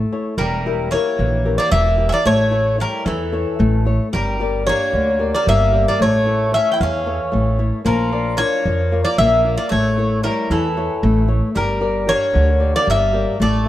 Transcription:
Already playing: A3
0.12 E4 A4 C#5
0.38 E1 E3 G3 A#4
0.66 E4 G4 A#4
0.91 A#3 E4 G4 A#4 C#5
1.19 A#1 E3
1.45 E4 G4 A#4
1.58 A#3 D5
1.71 E1 E3 A#3 E5
1.98 E4 G4 A#4
2.09 A#3 C#4 E5
2.14 D5
2.26 A1 A3 C#5
2.51 E4 A4 C#5
2.78 G3 E4 A4 A#4 C#5
3.05 E2 E3 A4
3.32 E4 A4 C#5
3.59 A1 A3
3.85 E4 A4 C#5
4.13 G1 G3 A#4
4.40 G4 A#4 D5
4.66 A#3 D4 G4 A#4 C#5
4.93 D2 D3
5.19 G4 A#4 D5
5.35 A#3 D5
5.46 G1 G3 A#3 E5
5.72 G4 A#4 D5
5.88 A#3 D5
5.99 A1 A3 C#5
6.25 E4 A4 C#5
6.51 E4 A4 C#5 E5
6.56 C#4
6.72 E4 G5
6.80 E2 E3 C#4 F5
7.06 E3 A4 C#5
7.32 A1 A3
7.59 E4 A4 C#5
7.85 A#1 F3 A#3 A#4
8.11 F4 A#4 D5
8.37 A#3 D4 F4 A#4 C#5
8.65 F2 F3
8.92 F4 A#4 D5
9.05 A#3 D5
9.18 A#1 A#3 E5
9.45 F4 A#4 D5
9.57 A#3 D5
9.69 A1 A3 C#5
9.97 E4 A4 C#5
10.23 G3 E4 A4 A#4 C#5
10.50 E2 E3 A4
10.77 E4 A4 C#5
11.03 A1 A3
11.27 E4 A4 C#5
11.55 G1 G3 A#4
11.80 G4 A#4 D5
12.07 A#3 D4 G4 A#4 C#5
12.33 D2 D3
12.60 G4 A#4 D5
12.76 A#3 D5
12.86 G1 G3 A#3
12.90 E5
13.13 G4 A#4 D5
13.40 A1 A3 D5
13.65 E4

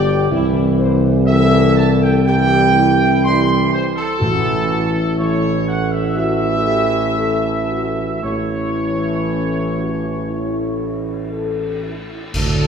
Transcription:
Already playing: G1 B2 G3 G4 D5
0.31 C2 E3 G3 E4
0.79 C5
1.26 E3 G3 A4 E5
1.76 A5
2.01 G5
2.24 E3 G3 G4 G5
2.74 E4
3.23 E3 G3 C6
3.73 C5
3.95 A4
4.18 A1 A2 E3 A3 F#4
4.69 E4
5.18 E3 A3 C#5
5.68 F#5
5.92 E5
6.17 E3 A3 F#4 E5
6.67 G4
7.19 A4
7.71 F#4
8.23 A1 E3 A3 E4 C#5
9.26 C#4
9.78 F#4
10.03 E4
10.30 E4
11.32 A4
11.84 E4
12.09 E4
12.33 D2 A2 A3 A4, concert bass drum, crash

